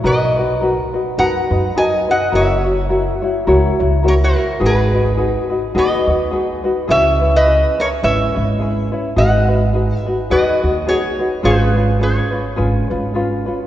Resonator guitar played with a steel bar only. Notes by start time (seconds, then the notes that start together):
0.06 B4 D#5
1.19 F#5 A#5
1.78 D#5 G#5
2.11 D#5 F#5
2.35 C#5 E5
4.08 A#4 C#5
4.24 F#4 A#4
4.66 G#4 B4
5.78 B4 D#5
6.90 C#5 E5
7.36 B4 D#5
7.80 A#4 C#5
8.04 C#5 E5
9.18 D#5 F#5
9.98 E5
10.31 B4 D#5
10.89 G#4 C#5
11.45 G#4 B4
12.03 G#4 C#5